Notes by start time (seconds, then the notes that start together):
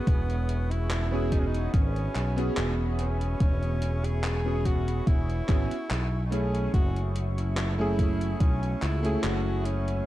Already playing: B3 C#4 F#4 G#4 C#6
0.07 E1 G#4 E5 B5, kick, closed hi-hat
0.30 closed hi-hat
0.49 closed hi-hat
0.71 E4, closed hi-hat
0.91 clap, closed hi-hat
1.11 B3 C#4 F#4 G#4
1.32 D#4, kick, closed hi-hat
1.39 C#4
1.47 D#4
1.54 closed hi-hat
1.74 G#1 C#4, kick, closed hi-hat
1.96 closed hi-hat
2.15 B1, clap, closed hi-hat
2.36 B3 C#4 F#4 G#4, closed hi-hat
2.57 E1, clap, closed hi-hat
2.99 C#4, closed hi-hat
3.21 closed hi-hat
3.40 E1, kick, closed hi-hat
3.63 closed hi-hat
3.82 closed hi-hat
4.04 G#4, closed hi-hat
4.24 clap, closed hi-hat
4.45 B3 C#4 F#4 G#4
4.65 F#4, kick, closed hi-hat
4.88 closed hi-hat
5.07 E1 E4, kick, closed hi-hat
5.30 closed hi-hat
5.48 G#1 B3 C#4 F#4 G#4, kick, clap, closed hi-hat
5.71 closed hi-hat
5.91 B1, clap, closed hi-hat
6.26 D#4
6.31 A3 C#4 E4 G#4, closed hi-hat
6.55 closed hi-hat
6.74 F#1 F#4 E5, kick, closed hi-hat
6.96 closed hi-hat
7.16 closed hi-hat
7.38 E4, closed hi-hat
7.57 clap, closed hi-hat
7.78 A3 C#4 E4 G#4
7.99 kick, closed hi-hat
8.21 closed hi-hat
8.40 B1 C#4, kick, closed hi-hat
8.63 closed hi-hat
8.82 C#2 E4, clap, closed hi-hat
9.03 A3 C#4 E4 G#4, closed hi-hat
9.24 F#1 F#4, clap, closed hi-hat
9.65 C#4, closed hi-hat
9.88 closed hi-hat